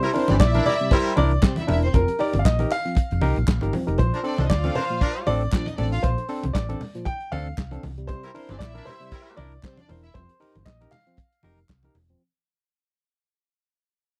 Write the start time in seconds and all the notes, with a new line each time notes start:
Already playing: C5
0.03 G3 E4 A#4, closed hi-hat
0.13 C4 D4 E4 A#4 C5, open hi-hat, muted conga
0.28 G1 E3 C4 D4 G4 D5, closed hi-hat, high conga
0.40 A#1 E4 D5 E5, kick, snare, clap
0.54 D4 E4 A#4 D5, closed hi-hat, high conga
0.66 G3 E4 A#4 D5, open hi-hat, muted conga, low conga
0.80 C3 G3, closed hi-hat
0.91 G3 E4 A#4 C5, kick, closed hi-hat, muted conga
1.05 closed hi-hat
1.16 C2 D4 E4 A#4 D5, open hi-hat, muted conga, high conga
1.31 closed hi-hat
1.42 C3 G3 C4 C5, kick, snare, clap
1.56 E4 E5, closed hi-hat, high conga
1.67 E1 D4 E4 A#4 E5, open hi-hat, muted conga, high conga, low conga
1.82 C4 E4 A#4 C5, closed hi-hat
1.93 F1 F3 C4 A#4, kick, closed hi-hat, muted conga, low conga
2.08 G4 A#4, closed hi-hat
2.19 D#4 G4 A#4 D5, open hi-hat, muted conga
2.33 G1, closed hi-hat, high conga
2.39 F5
2.45 A#1 D#5, kick, snare, clap, muted conga
2.59 D#4 G4 A#4, closed hi-hat, high conga
2.71 F5, clap, open hi-hat
2.85 F3 C4, snare, closed hi-hat
2.95 kick, closed hi-hat, muted conga
3.11 F1, closed hi-hat
3.21 C2 D#4 G4 A#4, open hi-hat, muted conga, high conga
3.36 A#1, closed hi-hat
3.48 A#1, kick, snare, clap
3.61 G1 D#4 G4 A#4, closed hi-hat, high conga
3.73 F3 C4, open hi-hat, high conga, low conga
3.87 F1 D#4 G4 A#4, closed hi-hat
3.98 A#1 A#2 F3 C5, kick, closed hi-hat, low conga
4.13 F3 D4 A4 A#4, closed hi-hat
4.23 C4 D4 A4 D5, open hi-hat
4.38 C2 F3 D4 D#4 A4 D#5, closed hi-hat, high conga
4.50 D2 F4 D5 F5, kick, snare, clap, muted conga
4.64 A3 C4 D4 F4 A4 D5, closed hi-hat, high conga
4.75 F3 D4 A#4 C5, open hi-hat, low conga
4.90 A#2 F3, snare, closed hi-hat
5.01 F3 D4 A#4, kick, closed hi-hat
5.16 closed hi-hat
5.27 A1 C4 D4 A4 D5, open hi-hat, high conga
5.41 closed hi-hat
5.52 A#2 F3 D4 D5, kick, snare, clap, muted conga
5.54 clap
5.66 D#4 D#5, closed hi-hat, high conga
5.78 A1 C4 D4 A4 D5, open hi-hat, muted conga, high conga, low conga
5.92 D4 F4 A4 F5, closed hi-hat
6.03 A#1 A#2 F3 C5, kick, closed hi-hat, muted conga, low conga
6.18 D4 A4, closed hi-hat
6.29 C4 D4 A4, open hi-hat
6.43 C2, closed hi-hat, high conga
6.53 A1 D5, kick, snare, clap, muted conga
6.69 C4 D4 A4, closed hi-hat, high conga
6.81 open hi-hat, muted conga, low conga
6.95 A#2 F3, snare, closed hi-hat
7.05 G5, kick, closed hi-hat
7.20 closed hi-hat
7.32 D2 C4 D4 A4 F5, open hi-hat, muted conga, high conga
7.46 closed hi-hat
7.58 C2, kick, snare, clap, muted conga
7.71 C4 D4 A4, closed hi-hat, high conga
7.83 C2, open hi-hat, high conga, low conga
7.98 C3 G3, closed hi-hat
8.07 C3 G3 C5, kick, closed hi-hat, muted conga, low conga
8.23 G3 E4 A#4, closed hi-hat
8.34 C4 D4 E4 A#4 C5, open hi-hat, muted conga
8.49 G1 E3 C4 D4 G4 D5, closed hi-hat, high conga
8.59 A#1 E4 D5 E5, kick, snare, clap
8.74 D4 E4 A#4 D5, closed hi-hat, high conga
8.85 G3 E4 A#4 C5, open hi-hat, low conga
9.00 C3 G3, snare, closed hi-hat
9.12 G3 E4 A#4, kick, closed hi-hat, muted conga
9.26 closed hi-hat
9.37 C2 D4 E4 A#4 D5, open hi-hat, high conga
9.52 closed hi-hat
9.63 C3 G3 C4 C5, kick, snare, clap, muted conga
9.65 clap
9.77 D4 D5, closed hi-hat, high conga
9.88 E1 C4 D4 E4 A#4 C5, open hi-hat, high conga, low conga
10.03 E4 A#4 E5, closed hi-hat
10.14 F1 F3 C4 C5, kick, closed hi-hat, muted conga, low conga
10.29 G4 A#4, closed hi-hat
10.40 D#4 G4 A#4, open hi-hat, muted conga
10.55 G1, closed hi-hat, high conga
10.65 A#1 D#5, kick, snare, clap
10.81 D#4 G4 A#4, closed hi-hat, high conga
10.91 F5, clap, open hi-hat, low conga
11.07 F3 C4, closed hi-hat
11.17 kick, closed hi-hat, muted conga
11.32 closed hi-hat
11.43 F1 D#4 G4 A#4, open hi-hat, high conga
11.58 closed hi-hat
11.69 C2, kick, snare, clap, muted conga
11.83 D#4 G4 A#4, closed hi-hat, high conga
11.95 E1, open hi-hat, high conga, low conga
12.09 F3 C4, closed hi-hat